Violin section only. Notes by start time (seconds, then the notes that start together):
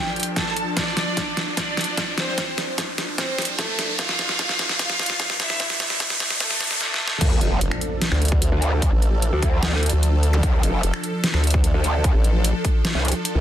Already playing: G4 G5
0.36 A4 A5
0.77 D4 D5
1.57 D4 D5
2.18 C4 C5
3.18 C4 C5
3.58 A3 A4
3.99 F4 F5
4.79 F4 F5
5.40 E4 E5
6.40 A3 A4
6.81 A3 A4